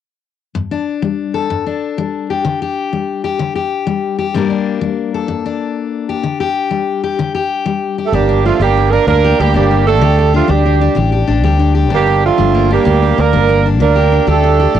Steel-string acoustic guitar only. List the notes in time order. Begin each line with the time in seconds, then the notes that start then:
0.55 G2
0.71 D4
1.02 G3
1.34 A4
1.50 G2
1.67 D4
1.98 G3
2.30 G4
2.45 D3
2.62 G4
2.93 G3
3.24 G4
3.39 D3
3.56 G4
3.87 G3
4.19 G4
4.34 G2 G3 A#3 D4 A#4
4.50 D4
4.81 G3
5.14 A4
5.28 G2
5.46 D4
6.09 G4
6.23 D3
6.40 G4
6.71 G3
7.04 G4
7.19 D3
7.35 G4
7.66 G3
7.98 G4
8.13 G2 D4
8.29 D4
8.45 A#3
8.61 G3 D4
8.77 A#3
8.93 D4
9.08 G2 D4
9.24 G4
9.40 A#3
9.54 G3 D4
9.71 A#3
9.87 D4
10.01 D3 G4
10.18 G4
10.34 D4
10.48 G3 D4
10.66 D4
10.81 D4
10.95 D3 G4
11.12 G4
11.27 D4
11.43 G3 G4
11.59 D4
11.75 G4
11.90 G2 D4
12.07 D4
12.38 G3 D4
12.54 A#3
12.71 D4
12.85 G2 D4
13.02 D4
13.18 A#3
13.33 G3 D4
13.49 A#3
13.66 D4
13.80 D3, muted steel-string acoustic guitar stroke
13.96 G4
14.12 D4
14.27 G3 G4
14.44 D4
14.60 G4
14.74 D3 G4